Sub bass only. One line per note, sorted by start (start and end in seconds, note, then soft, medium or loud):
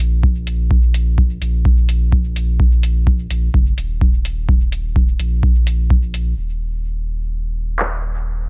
0.00 1.38 A#1 loud
1.42 3.27 A#1 loud
3.31 3.49 A#1 loud
3.54 3.73 F#1 loud
3.78 5.16 D#1 medium
5.20 5.43 A#1 loud
5.43 6.34 A#1 medium
6.38 8.49 D#1 medium